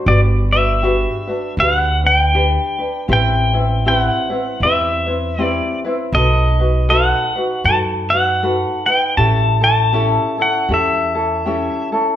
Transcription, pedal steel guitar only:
0.08 0.20 D5 medium
0.53 1.54 E5 medium
1.60 1.77 F5 medium
1.77 2.05 F#5 medium
2.07 3.07 G5 loud
3.13 3.88 G5 medium
3.88 3.99 G5 medium
3.99 4.63 F#5 medium
4.63 5.43 E5 medium
5.43 5.79 D5 medium
6.15 6.92 D#5 medium
6.90 7.65 F#5 medium
7.66 7.78 A5 medium
8.10 8.86 F#5 medium
8.86 9.17 G5 medium
9.17 9.63 A5 medium
9.64 10.41 A5 medium
10.42 10.71 F#5 medium
10.74 11.89 E5 medium

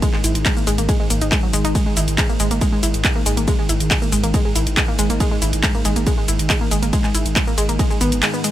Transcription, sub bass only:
0.24 0.35 G#1 loud
0.35 0.45 G#1 medium
0.67 0.78 G#1 loud
0.78 0.89 G#1 medium
1.10 1.21 G#1 loud
1.22 1.32 G#1 medium
1.54 1.64 G#1 loud
1.65 1.75 G#1 medium
1.97 2.07 G#1 loud
2.08 2.18 G#1 medium
2.40 2.50 G#1 loud
2.51 2.61 G#1 medium
2.83 2.94 G#1 loud
2.94 3.04 G#1 medium
3.26 3.37 G#1 loud
3.37 3.47 G#1 medium
3.69 3.80 G#1 loud
3.80 3.91 G#1 medium
4.12 4.23 G#1 loud
4.24 4.34 G#1 medium
4.56 4.66 G#1 loud
4.67 4.77 G#1 medium
4.99 5.09 G#1 loud
5.10 5.20 G#1 medium
5.42 5.52 G#1 loud
5.53 5.63 G#1 medium
5.85 5.96 G#1 loud
5.96 6.06 G#1 medium
6.28 6.39 G#1 loud
6.39 6.50 G#1 medium
6.71 6.82 G#1 loud
6.83 6.93 G#1 medium
7.15 7.25 G#1 loud
7.26 7.36 G#1 medium
7.58 7.68 G#1 loud
7.69 7.79 G#1 medium
8.01 8.12 G#1 loud
8.12 8.22 G#1 medium

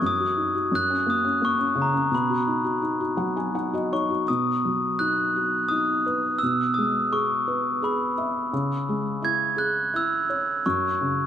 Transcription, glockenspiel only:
0.07 0.76 D#6 medium
0.75 1.10 F#6 medium
1.10 1.45 D#6 medium
1.45 1.80 C#6 medium
1.82 2.16 A#5 medium
2.15 3.53 B5 medium
3.93 4.30 C#6 medium
4.28 5.02 D#6 medium
4.99 5.73 F#6 medium
5.68 6.42 D#6 medium
6.39 6.76 E6 medium
6.74 7.12 D#6 medium
7.13 7.84 C#6 medium
7.84 8.32 B5 medium
9.25 9.60 G#6 loud
9.58 9.91 F#6 medium
9.96 10.68 E6 medium
10.66 11.27 C#6 medium

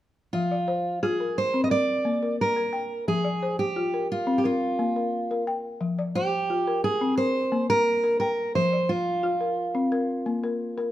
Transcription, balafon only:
0.34 0.68 F3 medium
0.51 1.02 D5 medium
0.68 1.19 C5 medium
1.03 1.37 F4 medium
1.20 1.69 A#4 medium
1.54 1.70 C4 medium
1.70 2.21 A#4 medium
2.05 2.39 A#3 medium
2.23 2.55 A#4 medium
2.56 2.91 A#4 medium
2.73 3.25 G5 medium
3.08 3.42 F3 medium
3.24 3.75 D5 medium
3.43 3.94 C5 medium
3.76 4.10 F4 medium
3.94 4.43 A#4 medium
4.27 4.44 C4 medium
4.44 4.95 A#4 medium
4.79 5.13 A#3 medium
4.96 5.30 A#4 medium
5.31 5.65 A#4 medium
5.47 5.99 G5 medium
5.81 6.15 F3 medium
5.99 6.49 D5 medium
6.16 6.67 C5 medium
6.50 6.84 F4 medium
6.67 7.16 A#4 medium
7.01 7.18 C4 medium
7.17 7.69 A#4 medium
7.52 7.86 A#3 medium
7.70 8.02 A#4 medium
8.04 8.38 A#4 medium
8.21 8.72 G5 medium
8.55 8.89 F3 medium
8.73 9.23 D5 soft
9.23 9.57 F4 medium
9.41 9.91 A#4 medium
9.75 9.91 C4 medium
9.92 10.42 A#4 medium
10.26 10.60 A#3 medium
10.44 10.76 A#4 medium
10.78 10.92 A#4 medium

